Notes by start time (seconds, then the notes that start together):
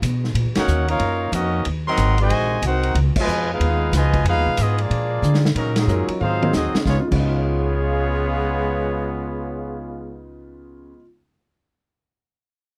0.02 B2, hi-hat pedal, ride
0.24 snare
0.34 A#2, ride
0.45 F#2
0.55 D#2 A#3 C#4 D#4 F#4 A#4 C#5 F#5, snare, ride
0.68 D#2, hi-hat pedal
0.88 A#3 C#4 D#4 F4 A#4 C#5 F5, ride
1.00 F#2, ride
1.32 F2 A#3 C#4 D#4 F#4 A#4 D#5, hi-hat pedal, ride
1.65 D#2, ride
1.87 D#3 F#3 C4 A#4 D#5 F#5 C6
1.97 G#1, hi-hat pedal, ride
2.18 C3 D#3 G#3 F#4 C5 D#5 G#5, ride
2.30 A#1, ride
2.62 C2 C4 D#4 F#4 C5 F#5, hi-hat pedal, ride
2.66 A#4
2.83 ride
2.95 C#2, ride
3.16 B2 F3 G#3 F4 D#5, kick, crash
3.20 B4 G#5
3.27 F2, hi-hat pedal
3.52 G#3 B3 D#4 F4 G#4 B4 F5
3.60 D#2, ride
3.92 C#2 B2 F3 G#5, snare, hi-hat pedal, ride
3.96 G#3 F4 B4 D#5
4.14 kick, ride
4.24 F2 G#3 B3 F4 B4, ride
4.28 D#4 G#4 F5
4.36 D#2
4.46 B1
4.57 G#2 G#3 B3 D#4 F4 G#4 D#5, hi-hat pedal, ride
4.78 F3 G#3 A#3 D4 F4 G#4 D5, ride
4.90 A#2, ride
5.22 D3, hi-hat pedal
5.34 snare
5.45 snare
5.55 A#2 C#3 F#3 A#3 C#4 D#4 A#4, ride
5.76 A#2 C#3 F#3 G#3 C#4 D#4 G#4, snare, ride
5.87 F#2 F#3 C#4 D#4 F4 A#4, hi-hat pedal
6.08 muted upright bass stroke, ride
6.21 G#2 F#3 C4 D#4 F4 G#4 C5 F5, high tom
6.43 F#3 A#3 C4 D#4 G#4, high tom
6.53 D#2 F#3 C4 D#4 F#4 G#4 D#5, snare, hi-hat pedal
6.74 C#3, muted upright bass stroke, snare
6.81 G#3
6.85 C#2 C#3 G#3 B3 F4 G#4 C#5, kick, snare
6.93 D#4
7.00 C#3 F4
7.08 C#2 G#3
7.12 C#3 G#3 B3 F4 G#4 C#5, kick, crash
7.20 D#4
7.26 F4